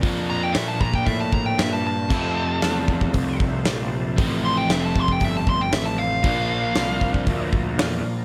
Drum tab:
CC |----------------|x---------------|----------------|----------------|
HH |o---o---o---o---|----o---o---o---|o---o---o---o---|o---o---o---o---|
SD |----o-------o---|----o-------o---|----o-------o---|----o-------o---|
BD |o-----ooo-o-----|o-----ooo-o-----|o-----ooo-o-----|o-----ooo-o-----|